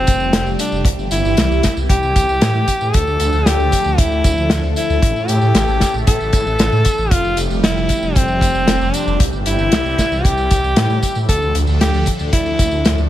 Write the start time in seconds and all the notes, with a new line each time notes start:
Already playing: C3 G3 A3 C4 F4 G4
0.07 F1, kick, closed hi-hat, tambourine
0.20 F1, tambourine
0.33 F1, snare, closed hi-hat, tambourine
0.46 F1, tambourine
0.59 D4, closed hi-hat, tambourine
0.72 F1, tambourine
0.85 C2 E3 E4, kick, closed hi-hat, tambourine
0.98 G1, tambourine
1.11 G1 E4, closed hi-hat, tambourine
1.25 G1, tambourine
1.37 C2, snare, closed hi-hat, tambourine
1.51 C2, tambourine
1.63 kick, snare, closed hi-hat, tambourine
1.77 C2, tambourine
1.89 C2 G4, kick, closed hi-hat, tambourine
2.03 C2, tambourine
2.16 C2, kick, closed hi-hat, tambourine
2.29 C2, tambourine
2.41 A2, snare, closed hi-hat, tambourine
2.55 A2, tambourine
2.68 kick, closed hi-hat, tambourine
2.81 A2, tambourine
2.93 D2 D3 F3 A3 D4 A4, kick, closed hi-hat, tambourine
3.07 D2, tambourine
3.20 D2, closed hi-hat, tambourine
3.32 D2, tambourine
3.46 D2 G4, snare, closed hi-hat, tambourine
3.59 D2, tambourine
3.72 kick, closed hi-hat, tambourine
3.84 D2, tambourine
3.98 D2 E4, kick, closed hi-hat, tambourine
4.11 D2, tambourine
4.24 D2, kick, closed hi-hat, tambourine
4.38 D2, tambourine
4.50 D2, snare, closed hi-hat, tambourine
4.64 D2, tambourine
4.76 E4, closed hi-hat, tambourine
4.90 D2, tambourine
5.02 A1 C#3 E3 A3 E4, kick, closed hi-hat, tambourine
5.16 A2, tambourine
5.28 A2 G4, closed hi-hat, tambourine
5.41 A2, tambourine
5.55 A1, snare, closed hi-hat, tambourine
5.68 A1, tambourine
5.80 kick, snare, closed hi-hat, tambourine
5.94 A1, tambourine
6.07 A2 A4, kick, closed hi-hat, tambourine
6.20 A1, tambourine
6.33 A2, kick, closed hi-hat, tambourine
6.46 A1, tambourine
6.59 A1, snare, closed hi-hat, tambourine
6.72 A2, tambourine
6.85 kick, closed hi-hat, tambourine
6.98 A1, tambourine
7.11 F1 C3 F3 G3 F4 G4, kick, closed hi-hat, tambourine
7.24 F1, tambourine
7.37 F1, closed hi-hat, tambourine
7.50 F1, tambourine
7.64 F1 E4, snare, closed hi-hat, tambourine
7.77 F1, tambourine
7.89 kick, closed hi-hat, tambourine
8.03 F1, tambourine
8.15 F1 C4, kick, closed hi-hat, tambourine
8.28 F1, tambourine
8.41 F1, kick, closed hi-hat, tambourine
8.55 F1, tambourine
8.67 F1, snare, closed hi-hat, tambourine
8.81 F1, tambourine
8.94 D4, closed hi-hat, tambourine
9.07 F1, tambourine
9.20 C2 E3 G3 E4, kick, closed hi-hat, tambourine
9.33 G1, tambourine
9.46 G1 E4, closed hi-hat, tambourine
9.59 G1, tambourine
9.72 C2, snare, closed hi-hat, tambourine
9.85 C2, tambourine
9.98 kick, snare, closed hi-hat, tambourine
10.11 C2, tambourine
10.25 C2 G4, kick, closed hi-hat, tambourine
10.37 C2, tambourine
10.51 C2, kick, closed hi-hat, tambourine
10.64 C2, tambourine
10.76 A2, snare, closed hi-hat, tambourine
10.90 A2, tambourine
11.03 kick, closed hi-hat, tambourine
11.15 A2, tambourine
11.29 D2 A2 D3 F3 D4 A4, kick, closed hi-hat, tambourine
11.42 D2, tambourine
11.55 D2, closed hi-hat, tambourine
11.67 D2, tambourine
11.81 D2 G4, snare, closed hi-hat, tambourine
11.94 D2, tambourine
12.06 kick, closed hi-hat, tambourine
12.19 D2, tambourine
12.33 D2 E4, kick, closed hi-hat, tambourine
12.46 D2, tambourine
12.59 D2, kick, closed hi-hat, tambourine
12.71 D2, tambourine
12.85 D2, snare, closed hi-hat, tambourine
12.98 D2, tambourine